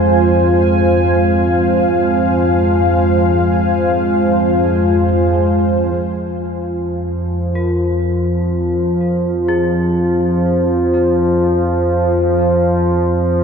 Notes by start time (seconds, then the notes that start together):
Already playing: F2 F3 G#3 F4 C5 F5 G#5
5.92 F2 F3
7.55 A#4
9.48 G#4